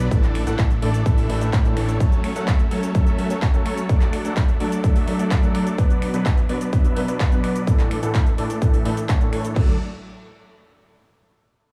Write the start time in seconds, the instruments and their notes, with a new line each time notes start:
0.11 analog synth bass A1, grand piano A2 E3 A3 D4 A4, supersaw synth E3 A3 D4 A4, kick, closed hi-hat, shaker
0.23 clap, closed hi-hat, shaker
0.35 finger snap, open hi-hat
0.46 analog synth bass A1, grand piano A2 E3 A3 D4 A4, supersaw synth E3 A3 D4 A4 F#5, closed hi-hat, shaker
0.59 analog synth bass A1, supersaw synth E3 A3 D4 A4 E5, kick, clap, closed hi-hat, shaker
0.71 closed hi-hat, shaker
0.82 analog synth bass A1, grand piano A2 E3 A3 D4 A4, supersaw synth E3 A3 D4 A4 D5, open hi-hat
0.94 closed hi-hat, shaker
1.05 analog synth bass A1, grand piano A2 E3 A3 D4 A4, supersaw synth E3 A3 D4 A4 E5, kick, closed hi-hat, shaker
1.18 analog synth bass A1, supersaw synth E3 A3 D4 A4 E5, open hi-hat, shaker
1.29 analog synth bass A1, grand piano A2 E3 A3 D4 A4, supersaw synth E3 A3 D4 A4 E5, open hi-hat
1.41 grand piano A2 E3 A3 D4 A4, closed hi-hat, shaker
1.53 analog synth bass A2, supersaw synth E3 D4 A4 C#5, kick, clap, closed hi-hat, shaker
1.64 grand piano A2 E3 A3 D4 A4, closed hi-hat, shaker
1.77 analog synth bass A1, supersaw synth E3 A3 D4 A4 C#5, finger snap, open hi-hat
1.89 closed hi-hat, shaker
2.00 grand piano F#3 A3 C#4 A4, supersaw synth F#3 A3 C#4 A4 C#5, kick, closed hi-hat, shaker
2.12 closed hi-hat, shaker
2.24 finger snap, open hi-hat
2.35 grand piano F#3 A3 C#4 A4, supersaw synth F#3 A3 C#4 A4 F#5, closed hi-hat, shaker
2.48 supersaw synth F#3 A3 C#4 E5, kick, clap, closed hi-hat, shaker
2.59 closed hi-hat, shaker
2.71 grand piano F#3 A3 C#4 A4, supersaw synth F#3 A3 C#4 A4 C#5, open hi-hat
2.83 closed hi-hat, shaker
2.94 grand piano F#3 A3 C#4 A4, supersaw synth F#3 A3 C#4 A4, kick, closed hi-hat, shaker
3.07 supersaw synth F#3 A3 C#4 A4 E5, closed hi-hat, shaker
3.18 grand piano F#3 A3 C#4 A4, open hi-hat
3.30 grand piano F#3 A3 C#4 A4, supersaw synth F#3 A3 C#4 A4 C#5, closed hi-hat, shaker
3.42 supersaw synth F#3 A3 C#4 A4 C#5, kick, clap, closed hi-hat, shaker
3.53 grand piano F#3 A3 C#4 A4, closed hi-hat, shaker
3.66 supersaw synth F#3 A3 C#4 A4 C#5, finger snap, open hi-hat
3.77 closed hi-hat, shaker
3.89 grand piano F#3 A3 D4 A4, supersaw synth F#3 A3 D4 A4 D5, kick, closed hi-hat, shaker
4.01 clap, closed hi-hat, shaker
4.13 finger snap, open hi-hat
4.24 grand piano F#3 A3 D4 A4, supersaw synth F#3 A3 D4 A4 F#5, closed hi-hat, shaker
4.37 supersaw synth F#3 A3 D4 A4 E5, kick, clap, closed hi-hat, shaker
4.48 closed hi-hat, shaker
4.60 grand piano F#3 A3 D4 A4, supersaw synth F#3 A3 D4 A4 D5, open hi-hat
4.72 closed hi-hat, shaker
4.83 grand piano F#3 A3 D4 A4, supersaw synth A3 A4 E5, kick, closed hi-hat, shaker
4.96 supersaw synth F#3 A3 D4 A4 E5, open hi-hat, shaker
5.07 grand piano F#3 A3 D4 A4, open hi-hat
5.19 grand piano F#3 A3 D4 A4, supersaw synth F#3 A3 D4 A4 D5, closed hi-hat, shaker
5.31 supersaw synth F#3 A3 D4 A4 D5, kick, clap, closed hi-hat, shaker
5.42 grand piano F#3 A3 D4 A4, closed hi-hat, shaker
5.55 supersaw synth F#3 A3 D4 A4 D5, finger snap, open hi-hat
5.67 closed hi-hat, shaker
5.78 grand piano B2 F#3 B3 D4 B4, supersaw synth F#3 B3 D4 B4 D5, kick, closed hi-hat, shaker
5.90 closed hi-hat, shaker
6.02 finger snap, open hi-hat
6.13 grand piano B2 F#3 B3 D4 B4, supersaw synth F#3 B3 D4 B4 F#5, closed hi-hat, shaker
6.26 supersaw synth F#3 B3 D4 B4 E5, kick, clap, closed hi-hat, shaker
6.37 closed hi-hat, shaker
6.49 grand piano B2 F#3 B3 D4 B4, supersaw synth F#3 B3 D4 B4 D5, open hi-hat
6.61 closed hi-hat, shaker
6.72 grand piano B2 F#3 B3 D4 B4, supersaw synth F#3 B3 D4 B4 E5, kick, closed hi-hat, shaker
6.85 supersaw synth F#3 B3 D4 B4 E5, closed hi-hat, shaker
6.96 grand piano B2 F#3 B3 D4 B4, open hi-hat
7.08 grand piano B2 F#3 B3 D4 B4, supersaw synth F#3 B3 D4 B4 D5, closed hi-hat, shaker
7.20 supersaw synth F#3 B4, kick, clap, closed hi-hat, shaker
7.31 grand piano B2 F#3 B3 D4 B4, closed hi-hat, shaker
7.44 supersaw synth F#3 B3 D4 B4 D5, finger snap, open hi-hat
7.56 closed hi-hat, shaker
7.67 grand piano A2 E3 A3 D4 A4, supersaw synth E3 A3 D4 A4 D5, kick, closed hi-hat, shaker
7.79 clap, closed hi-hat, shaker
7.91 finger snap, open hi-hat
8.02 grand piano A2 E3 A3 D4 A4, supersaw synth E3 A3 D4 A4 F#5, closed hi-hat, shaker
8.14 supersaw synth E3 A3 D4, kick, clap, closed hi-hat, shaker
8.26 closed hi-hat, shaker
8.37 grand piano A2 E3 A3 D4 A4, supersaw synth E3 A3 D4 A4 D5, open hi-hat
8.50 closed hi-hat, shaker
8.61 grand piano A2 E3 A3 D4 A4, supersaw synth E3 A3 D4 A4 E5, kick, closed hi-hat, shaker
8.73 supersaw synth E3 A3 D4 A4 E5, open hi-hat, shaker
8.85 grand piano A2 E3 A3 D4 A4, supersaw synth E3 A3 D4 A4 E5, open hi-hat
8.97 closed hi-hat, shaker
9.09 supersaw synth E3 A3 D4 A4 C#5, kick, clap, closed hi-hat, shaker
9.20 grand piano A2 E3 A3 D4 A4, closed hi-hat, shaker
9.33 supersaw synth E3 A3 D4 A4 C#5, finger snap, open hi-hat
9.45 closed hi-hat, shaker
9.54 analog synth bass D2, grand piano F#3 A3 D4 A4, supersaw synth F#3 A3 D4 A4 D5, kick, crash